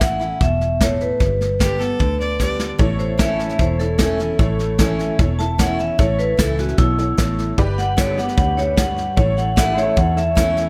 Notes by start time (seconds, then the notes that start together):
Already playing: A1 A2
0.00 E3 A3 C#4 E4 F#5, kick, snare, hi-hat pedal
0.20 C#4 E4, snare
0.41 E1 B2 E5, kick, snare
0.61 snare
0.81 A2 C#5, kick, snare, hi-hat pedal
1.01 B4, snare
1.20 G1 G2, kick, snare
1.41 snare
1.59 D3 G3 B3 G4, kick, snare, hi-hat pedal
1.79 B3 G4 A4, snare
1.99 D2 D3, kick, snare
2.20 D5, snare
2.39 D3 G3 B3 G4 D5, kick, snare, hi-hat pedal
2.60 snare
2.79 A1 A2 E4 A4 C#5, kick, snare
2.99 C5, snare
3.18 E3 A3 C#4 E4 A4 C#5 E5, kick, snare, hi-hat pedal
3.39 snare
3.49 snare
3.59 E1 E2 E4 A4 C5 C#5, kick, snare
3.79 E4 A4 C#5, snare
3.98 E3 A3 C#4 E4 A4 C#5, kick, snare, hi-hat pedal
4.18 C#4 E4, snare
4.39 A1 A2 E4 A4 C#5, kick, snare
4.59 snare
4.78 E3 A3 C#4 E4 A4 C#5, kick, snare, hi-hat pedal
4.99 snare
5.19 E1 E2 E4 A4 C#5, kick, snare
5.39 E4 A4 E5 A5, snare
5.58 E3 A3 C#4 E4 A4 C#5 F#5, kick, snare, hi-hat pedal
5.79 C#4 E4 E5, snare
5.99 A1 A2 E4 A4 C#5, kick, snare
6.19 B4, snare
6.37 C#2 E3 A3 C#4 E4 A4 E5, kick, snare, hi-hat pedal
6.57 C#4 E4 F#4, snare
6.68 snare
6.78 B1 B2 E4 A4 C#5, kick, snare
6.98 E4 A4 C#5, snare
7.18 A1 A2 E4 A4 C#5, kick, snare, hi-hat pedal
7.38 snare
7.58 G1 G2 G4 B4 D5, kick, snare
7.78 F#5, snare
7.97 D3 G3 B3 E4 G4 A4 B4 C#5 D5, kick, snare, hi-hat pedal
8.18 B3 G4 F#5, snare
8.22 D4 G4
8.28 snare
8.37 D2 F#2 G4 B4 C#5 F#5, kick, snare
8.57 G4 B4 C#5 E5, snare
8.77 G2 G4 B4 C#5 F#5, kick, snare, hi-hat pedal
8.97 F#5, snare
9.16 A1 A2 E4 A4 C#5, kick, snare
9.37 F#5, snare
9.56 E3 A3 C#4 D4 E4 G4 A4 E5 F#5, kick, snare, hi-hat pedal
9.60 B4
9.77 C#5, snare
9.83 E4 A4 C#5
9.97 E2 E4 A4 C#5 F#5, kick, snare
10.16 E4 A4 C#5 E5, snare
10.35 E3 A3 C#4 E4 A4 C#5, kick, snare, hi-hat pedal
10.57 snare